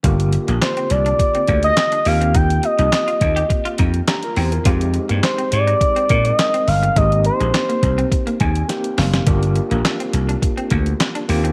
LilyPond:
<<
  \new Staff \with { instrumentName = "Analog synth lead" } { \time 4/4 \key g \phrygian \tempo 4 = 104 r4 c''8 d''4~ d''16 ees''8. f''8 | g''8 ees''2 r4. | r4 c''8 d''4~ d''16 ees''8. f''8 | ees''8 c''2 r4. |
r1 | }
  \new Staff \with { instrumentName = "Tine electric piano" } { \time 4/4 \key g \phrygian << { r1 | r2. <d' g' bes''>16 <f' bes'>16 g'16 <f' bes'>16~ | <f' bes'>16 r2. r8. | r2 r8 aes''8 g''8 f''8 |
r1 | } \\ { <d bes f' g'>2.~ <d bes f' g'>8 <bes c' f' g'>8~ | <bes c' f' g'>2.~ <bes c' f' g'>8 r8 | <aes c' ees' g'>2~ <aes c' ees' g'>8 <aes c' ees' bes'>4. | <bes c' ees' g'>2. <bes c' ees' g'>4 |
<bes d' f' g'>2.~ <bes d' f' g'>8 <bes c' f' g'>8 | } >> }
  \new Staff \with { instrumentName = "Clean electric guitar" } { \time 4/4 \key g \phrygian g16 r8 bes16 r16 c'16 r16 d'16 r16 c'16 bes16 r8 d'16 r16 c'16 | ees'16 r8 ees'16 r16 f'16 r16 g'16 r16 f'16 ees'16 r8. c'16 r16 | f'16 r8 bes16 r16 c'16 r16 ees'16 r16 c'16 bes16 r8 c'16 r16 g16 | aes16 r8 aes16 r16 bes16 r16 c'16 r16 bes16 aes16 r8. g16 r16 |
g16 r8 bes16 r16 c'16 r16 d'16 r16 c'16 bes16 r8 d'16 r16 c'16 | }
  \new Staff \with { instrumentName = "Slap bass" } { \clef bass \time 4/4 \key g \phrygian g,,8. bes,,16 r8 c,8 r8 d,8 r8 ees,8~ | ees,8. c,16 r8 ees,8 r8 f,8 r8 fes,8 | f,8. g,16 r8 aes,8 r8 bes,8 r8 g,,8 | aes,,8. bes,,16 r8 c,8 r8 ees,8 r8 ges,,8 |
g,,8. bes,,16 r8 c,8 r8 d,8 r8 ees,8 | }
  \new DrumStaff \with { instrumentName = "Drums" } \drummode { \time 4/4 <hh bd>16 hh16 hh16 hh16 <hc hh sn>16 hh16 hh16 hh16 <hh bd>16 hh16 <hh bd>16 hh16 <hc hh sn>16 hh16 hho16 hh16 | <hh bd>16 hh16 hh16 hh16 <hc hh sn>16 hh16 <hh bd>16 hh16 <hh bd>16 hh16 <hh bd>16 hh16 <hc hh sn>16 hh16 hho16 hh16 | <hh bd>16 hh16 hh16 hh16 <hc hh sn>16 hh16 hh16 hh16 <hh bd>16 hh16 <hh bd>16 hh16 <hc hh sn>16 hh16 hho16 hh16 | <hh bd>16 hh16 hh16 hh16 <hc hh sn>16 hh16 <hh bd>16 hh16 <hh bd>16 hh16 <hh bd>16 hh16 <hh sn>16 hh16 <hho sn>16 <hh sn>16 |
<hh bd>16 hh16 hh16 hh16 <hc hh sn>16 hh16 hh16 hh16 <hh bd>16 hh16 <hh bd>16 hh16 <hc hh sn>16 hh16 hho16 hh16 | }
>>